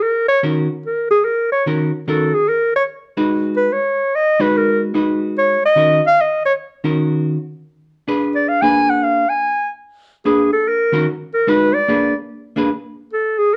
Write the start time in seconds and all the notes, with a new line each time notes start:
0.03 A#4
0.28 C#5
0.43 D#3 C#4 F#4 A#4
0.86 A#4
1.11 G#4
1.25 A#4
1.52 C#5
1.66 D#3 C#4 F#4 A#4
2.08 D#3 C#4 F#4 A4 A#4
2.34 G#4
2.49 A#4
2.76 C#5
3.17 G#3 D#4 F#4 B4
3.57 B4
3.73 C#5
4.15 D#5
4.40 G#3 D#4 F#4 B4
4.57 A#4
4.94 G#3 D#4 F#4 B4
5.38 C#5
5.65 D#5
5.76 D#3 C#4 F#4 A#4
6.07 F5
6.21 D#5
6.46 C#5
6.84 D#3 C#4 F#4 A#4
8.08 D4 G#4 B4
8.35 D5
8.49 F5
8.62 A#3 D4 G#4 B4 G#5
8.90 F#5
9.03 F5
9.29 G#5
10.25 A#3 D4 G#4 B4
10.53 A4
10.68 A#4
10.92 D#3 C#4 F#4 A#4
11.34 A#4
11.47 G#3 D#4 F#4 B4
11.74 D5
11.88 A#3 D4 G#4 B4
12.56 A#3 D4 G#4 B4
13.13 A4
13.38 G#4